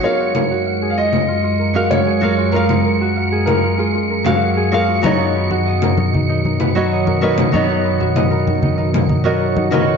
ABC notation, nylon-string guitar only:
X:1
M:4/4
L:1/16
Q:1/4=96
K:F#
V:1 name="Nylon-string guitar"
[F,GAe]8- [F,GAe]3 [F,GAe]3 [F,FGAe]2 | [F,GAe]8- [F,GAe]3 [F,GAe]3 [F,FGAe]2 | [F,B,Fcda]8- [F,B,Fcda]3 [F,B,Fcda]3 [F,FABcd]2 | [F,B,Fcda]8- [F,B,Fcda]3 [F,B,FAcd]3 [F,FABcd]2 |]